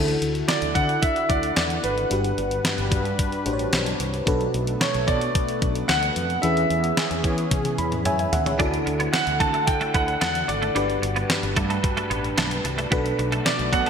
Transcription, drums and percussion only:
0.08 closed hi-hat soft
0.22 closed hi-hat medium
0.35 closed hi-hat soft
0.49 snare loud
0.49 closed hi-hat medium
0.62 closed hi-hat soft
0.75 kick medium
0.75 closed hi-hat medium
0.89 closed hi-hat soft
1.03 kick medium
1.03 closed hi-hat medium
1.16 closed hi-hat soft
1.30 kick medium
1.30 closed hi-hat medium
1.43 closed hi-hat soft
1.56 snare loud
1.56 closed hi-hat medium
1.70 closed hi-hat medium
1.84 closed hi-hat medium
1.98 closed hi-hat soft
2.11 closed hi-hat medium
2.24 closed hi-hat soft
2.38 closed hi-hat medium
2.51 closed hi-hat soft
2.65 snare loud
2.65 closed hi-hat medium
2.78 closed hi-hat soft
2.92 kick medium
2.92 closed hi-hat medium
3.05 closed hi-hat soft
3.19 kick medium
3.19 closed hi-hat medium
3.32 closed hi-hat soft
3.46 closed hi-hat medium
3.59 closed hi-hat soft
3.73 snare loud
3.73 closed hi-hat medium
3.86 closed hi-hat medium
4.00 closed hi-hat medium
4.14 closed hi-hat soft
4.27 kick loud
4.27 closed hi-hat medium
4.41 closed hi-hat soft
4.54 closed hi-hat medium
4.67 closed hi-hat medium
4.81 snare loud
4.81 closed hi-hat medium
4.94 closed hi-hat soft
5.08 kick medium
5.08 closed hi-hat medium
5.21 closed hi-hat soft
5.35 kick medium
5.35 closed hi-hat medium
5.49 closed hi-hat soft
5.62 kick medium
5.62 closed hi-hat medium
5.75 closed hi-hat soft
5.89 snare loud
5.89 closed hi-hat medium
6.03 closed hi-hat medium
6.16 closed hi-hat medium
6.30 closed hi-hat soft
6.43 closed hi-hat medium
6.57 closed hi-hat soft
6.70 closed hi-hat medium
6.84 closed hi-hat soft
6.97 snare loud
6.97 closed hi-hat medium
7.11 closed hi-hat soft
7.24 kick medium
7.24 closed hi-hat medium
7.38 closed hi-hat soft
7.51 kick medium
7.51 closed hi-hat medium
7.51 high tom medium
7.65 closed hi-hat soft
7.65 high tom soft
7.78 closed hi-hat medium
7.92 closed hi-hat soft
7.92 mid tom medium
8.05 closed hi-hat medium
8.05 mid tom medium
8.19 closed hi-hat medium
8.33 closed hi-hat medium
8.33 floor tom medium
8.46 closed hi-hat soft
8.46 floor tom medium
8.60 kick medium
8.60 closed hi-hat medium
8.74 closed hi-hat soft
8.87 closed hi-hat medium
9.00 closed hi-hat soft
9.14 snare loud
9.14 closed hi-hat medium
9.27 closed hi-hat soft
9.40 kick medium
9.40 closed hi-hat medium
9.54 closed hi-hat soft
9.67 kick medium
9.67 closed hi-hat medium
9.81 closed hi-hat soft
9.94 kick medium
9.94 closed hi-hat medium
10.08 closed hi-hat soft
10.21 snare loud
10.21 closed hi-hat medium
10.35 closed hi-hat medium
10.49 closed hi-hat medium
10.63 closed hi-hat soft
10.76 closed hi-hat medium
10.90 closed hi-hat soft
11.03 closed hi-hat medium
11.16 closed hi-hat soft
11.30 snare loud
11.30 closed hi-hat medium
11.43 closed hi-hat soft
11.56 kick medium
11.56 closed hi-hat medium
11.70 closed hi-hat soft
11.84 kick loud
11.84 closed hi-hat medium
11.97 closed hi-hat soft
12.11 closed hi-hat medium
12.24 closed hi-hat soft
12.38 snare loud
12.38 closed hi-hat medium
12.51 closed hi-hat medium
12.65 closed hi-hat medium
12.79 closed hi-hat soft
12.92 kick loud
12.92 closed hi-hat medium
13.06 closed hi-hat soft
13.19 closed hi-hat medium
13.32 closed hi-hat medium
13.46 snare loud
13.46 closed hi-hat medium
13.59 closed hi-hat soft
13.73 kick medium
13.73 closed hi-hat medium
13.86 closed hi-hat soft

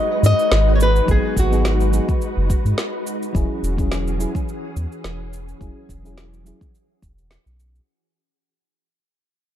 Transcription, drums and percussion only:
0.24 cabasa medium
0.39 cabasa soft
0.52 snare loud
0.52 cabasa soft
0.80 cabasa medium
0.96 cabasa soft
1.08 kick loud
1.08 cabasa soft
1.37 kick medium
1.37 cabasa medium
1.53 cabasa soft
1.65 snare loud
1.65 cabasa soft
1.80 cabasa soft
1.93 cabasa medium
2.09 kick loud
2.09 cabasa soft
2.22 cabasa soft
2.50 kick loud
2.50 cabasa medium
2.66 cabasa soft
2.78 snare medium
2.78 cabasa soft
3.07 cabasa medium
3.23 cabasa soft
3.35 kick loud
3.35 cabasa soft
3.64 cabasa medium
3.78 kick loud
3.78 cabasa soft
3.92 snare medium
3.92 cabasa soft
4.07 cabasa soft
4.20 cabasa medium
4.35 kick loud
4.35 cabasa soft
4.49 cabasa soft
4.77 cabasa medium
4.92 cabasa soft
5.04 snare medium
5.04 cabasa soft
5.33 cabasa medium
5.49 cabasa soft
5.61 kick loud
5.61 cabasa soft
5.89 kick medium
5.89 cabasa medium
6.05 cabasa soft
6.18 snare medium
6.18 cabasa soft
6.34 cabasa soft
6.46 cabasa medium
6.61 kick medium
6.61 cabasa soft
6.75 cabasa soft
7.02 kick medium
7.02 cabasa medium
7.18 cabasa soft
7.31 snare medium
7.31 cabasa soft
7.47 cabasa soft
7.60 cabasa medium
7.75 cabasa soft

